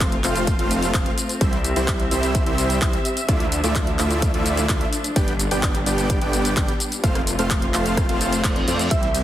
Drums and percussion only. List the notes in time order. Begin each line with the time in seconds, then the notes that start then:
0.00 kick, clap, closed hi-hat, shaker
0.12 closed hi-hat
0.24 clap, open hi-hat, shaker
0.36 closed hi-hat, shaker
0.47 kick, closed hi-hat, shaker
0.59 closed hi-hat
0.71 open hi-hat, shaker
0.82 closed hi-hat, shaker
0.94 kick, clap, closed hi-hat, shaker
1.06 closed hi-hat
1.18 open hi-hat, shaker
1.29 closed hi-hat, shaker
1.41 kick, closed hi-hat, shaker
1.53 closed hi-hat
1.64 open hi-hat, shaker
1.76 closed hi-hat, shaker
1.88 kick, clap, closed hi-hat, shaker
2.00 closed hi-hat
2.11 open hi-hat, shaker
2.23 closed hi-hat, shaker
2.35 kick, closed hi-hat, shaker
2.46 closed hi-hat
2.58 open hi-hat, shaker
2.70 closed hi-hat, shaker
2.82 kick, clap, closed hi-hat, shaker
2.93 closed hi-hat
3.05 open hi-hat, shaker
3.17 closed hi-hat, shaker
3.29 kick, closed hi-hat, shaker
3.40 closed hi-hat
3.52 open hi-hat, shaker
3.64 closed hi-hat, shaker
3.75 kick, clap, closed hi-hat, shaker
3.87 closed hi-hat
3.99 clap, open hi-hat, shaker
4.11 closed hi-hat, shaker
4.22 kick, closed hi-hat, shaker
4.34 closed hi-hat
4.46 open hi-hat, shaker
4.57 closed hi-hat, shaker
4.69 kick, clap, closed hi-hat, shaker
4.81 closed hi-hat
4.93 open hi-hat, shaker
5.04 closed hi-hat, shaker
5.16 kick, closed hi-hat, shaker
5.28 closed hi-hat
5.39 open hi-hat, shaker
5.51 closed hi-hat, shaker
5.63 kick, clap, closed hi-hat, shaker
5.75 closed hi-hat
5.86 open hi-hat, shaker
5.98 closed hi-hat, shaker
6.10 kick, closed hi-hat, shaker
6.21 closed hi-hat
6.33 open hi-hat, shaker
6.45 closed hi-hat, shaker
6.57 kick, clap, closed hi-hat, shaker
6.68 closed hi-hat
6.80 open hi-hat, shaker
6.92 closed hi-hat, shaker
7.04 kick, closed hi-hat, shaker
7.15 cross-stick, closed hi-hat
7.27 open hi-hat, shaker
7.39 closed hi-hat, shaker
7.50 kick, clap, closed hi-hat, shaker
7.62 closed hi-hat
7.74 clap, open hi-hat, shaker
7.86 closed hi-hat, shaker
7.97 kick, cross-stick, closed hi-hat, shaker
8.09 closed hi-hat
8.21 open hi-hat, shaker
8.32 closed hi-hat, shaker
8.44 kick, clap, closed hi-hat, shaker
8.56 closed hi-hat
8.68 open hi-hat, shaker
8.79 closed hi-hat, shaker
8.91 kick, closed hi-hat, shaker
9.03 closed hi-hat
9.14 open hi-hat, ride, shaker